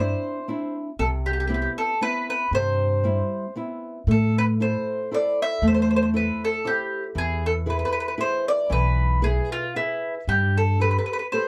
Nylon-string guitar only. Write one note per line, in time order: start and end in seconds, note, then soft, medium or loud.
0.00 0.37 C4 soft
0.00 0.38 D4 soft
0.00 0.38 E4 medium
0.48 0.89 C4 soft
0.48 0.89 D4 soft
0.48 0.89 E4 soft
0.99 1.48 C3 medium
1.49 1.90 B3 medium
1.49 1.90 C4 soft
1.49 1.91 E4 soft
2.01 2.42 B3 soft
2.01 2.42 C4 soft
2.01 2.42 E4 soft
2.53 3.02 C3 medium
3.04 3.45 G3 soft
3.04 3.46 C4 soft
3.04 3.46 E4 soft
3.56 3.98 B3 soft
3.56 3.98 C4 soft
3.56 3.98 E4 soft
4.08 4.58 A3 medium
4.60 5.01 E4 soft
4.60 5.02 A4 soft
4.60 5.02 C5 soft
5.11 5.53 E4 soft
5.11 5.53 A4 soft
5.11 5.53 C5 soft
5.63 6.13 A3 medium
6.14 6.55 E4 soft
6.14 6.55 A4 soft
6.14 6.55 C5 medium
6.65 7.06 E4 medium
6.65 7.06 A4 soft
6.65 7.06 C5 soft
7.15 7.65 E3 medium
7.66 8.08 E4 soft
7.66 8.08 G#4 soft
7.66 8.08 B4 soft
8.18 8.60 E4 soft
8.18 8.60 G#4 soft
8.18 8.60 B4 soft
8.70 9.21 E3 medium
9.22 9.64 E4 soft
9.22 9.64 G#4 soft
9.22 9.65 B4 medium
9.76 10.18 E4 soft
9.76 10.18 G#4 soft
9.76 10.18 B4 medium
10.28 10.79 G3 soft
10.80 11.22 G4 soft
10.80 11.23 A4 soft
10.80 11.23 B4 medium
11.33 11.48 G4 soft
11.33 11.48 A4 soft
11.33 11.48 B4 soft